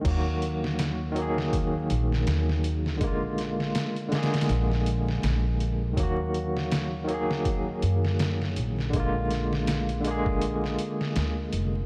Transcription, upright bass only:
X:1
M:4/4
L:1/8
Q:"Swing 16ths" 1/4=81
K:Ebm
V:1 name="Upright bass" clef=bass
E,,4- E,, B,,, E,,2 | B,,,2 z2 B,,,2 B,,,2 | E,,4- E,, G,,2 B,,,- | B,,,4- B,,, z =D,, F,,, |]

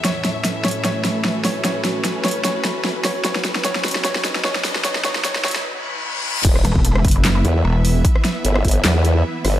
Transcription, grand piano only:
X:1
M:4/4
L:1/8
Q:"Swing 16ths" 1/4=150
K:Bm
V:1 name="Grand piano"
c3 c c3 c | c3 c c3 c | c2 c2 c2 c2 | c c c c z4 |
[K:Em] z8 | z8 |]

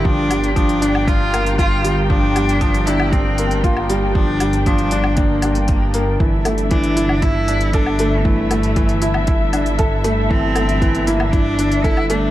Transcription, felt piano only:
X:1
M:4/4
L:1/8
Q:1/4=117
K:Gdor
V:1 name="Felt piano"
F, G, F, D D B, F G, | F, G, F, D D B, F G, | F, G, F, D D D z B, | E, A, E, E E D A A, |
E, A, E, E E D A A, | E, A, E, E E D A A, |]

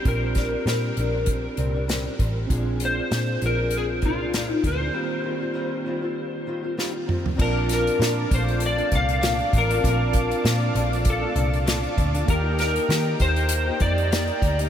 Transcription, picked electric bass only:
X:1
M:4/4
L:1/8
Q:"Swing 16ths" 1/4=98
K:Bb
V:1 name="Picked electric bass" clef=bass
B,,,2 B,, B,,,2 C,,2 A,,, | B,,,2 B,, B,,,2 C,,2 D,, | z8 | B,,,2 B,, B,,,2 C,,2 A,,, |
B,,,2 B,, B,,,2 C,,2 D,, | E,,2 E, E,,2 F,,2 D,, |]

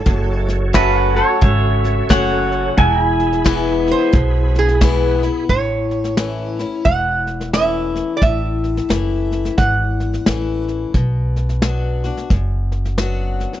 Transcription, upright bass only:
X:1
M:4/4
L:1/8
Q:"Swing" 1/4=88
K:A
V:1 name="Upright bass" clef=bass
F,,,4 G,,,2 F,,,2 | E,,,4 B,,,4 | A,,,4 E,,,4 | A,,,2 F,,,2 G,,,2 A,,,2 |
B,,,4 F,,,4 |]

